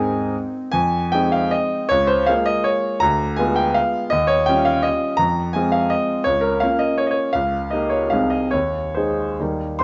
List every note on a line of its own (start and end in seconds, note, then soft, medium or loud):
0.00 0.35 G#2 medium
0.00 0.69 C4 soft
0.00 0.70 D#4 soft
0.00 0.29 G#4 soft
0.00 0.35 A#4 medium
0.00 0.32 G#5 medium
0.00 0.35 A#5 medium
0.72 1.12 F2 medium
0.72 1.12 G#5 medium
1.12 1.87 G#3 soft
1.12 1.87 C4 soft
1.12 1.87 D#4 soft
1.12 1.33 G5 medium
1.32 1.52 F5 medium
1.51 1.90 D#5 medium
1.89 2.28 C#2 medium
1.89 2.08 C#5 medium
2.07 2.28 C5 medium
2.27 2.98 G#3 soft
2.27 2.98 A#3 soft
2.27 2.99 F4 soft
2.27 2.47 F5 medium
2.46 2.65 D#5 medium
2.64 3.01 C#5 medium
3.00 3.38 D2 medium
3.00 3.38 A#5 loud
3.36 4.08 G#3 soft
3.36 4.08 B3 soft
3.36 4.08 F4 soft
3.36 3.57 G#5 medium
3.56 3.75 G5 medium
3.74 4.11 F5 medium
4.10 4.47 D#2 medium
4.10 4.28 D#5 medium
4.27 4.47 C#5 medium
4.46 5.15 G3 soft
4.46 5.15 C#4 soft
4.46 5.16 F4 soft
4.46 4.66 G5 medium
4.65 4.84 F5 medium
4.83 5.18 D#5 medium
5.17 5.53 F2 medium
5.17 5.53 A#5 loud
5.53 6.22 G#3 soft
5.53 6.22 C4 soft
5.53 6.22 F4 soft
5.53 5.72 G#5 medium
5.72 5.90 F5 medium
5.90 6.25 D#5 medium
6.24 6.61 C#2 soft
6.24 6.42 C#5 medium
6.41 6.61 A#4 medium
6.60 7.31 A#3 soft
6.60 7.31 C#4 soft
6.60 7.31 F4 soft
6.60 6.81 F5 medium
6.79 6.99 D#5 medium
6.98 7.05 C#5 medium
7.07 7.12 D#5 medium
7.11 7.34 C#5 medium
7.33 7.71 C#2 soft
7.33 7.71 F5 medium
7.70 8.08 A#3 soft
7.70 8.09 D#4 soft
7.70 8.09 G4 soft
7.70 7.91 D#5 medium
7.90 8.11 C#5 medium
8.10 8.52 C2 soft
8.10 8.49 C4 soft
8.10 8.49 D#4 soft
8.10 8.49 G#4 soft
8.10 8.31 F5 medium
8.30 8.51 D#5 medium
8.51 8.95 D#2 soft
8.51 8.95 C#5 medium
8.95 9.36 G#3 soft
8.95 9.37 D#4 soft
8.95 9.37 G#4 soft
8.95 9.39 C5 soft
9.40 9.80 D#2 soft
9.40 9.77 G3 soft
9.40 9.78 D#4 soft
9.40 9.78 A#4 soft
9.79 9.84 C5 medium
9.79 9.84 C6 medium